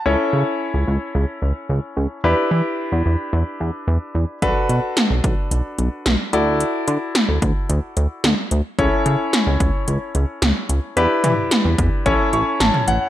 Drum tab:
HH |----------------|----------------|x-x-x-x-x-x-x-x-|x-x-x-x-x-x-x-x-|
SD |----------------|----------------|----o-------o---|----o-------o---|
T2 |----------------|----------------|----------------|----------------|
BD |----------------|----------------|o-----o---------|------o---------|

HH |x-x-x-x-x-x-x-x-|x-x-x-x-x-x-x-x-|
SD |----o-------o---|----o-------o---|
T2 |----------------|--o----------o--|
BD |o-----o---------|------o-o-------|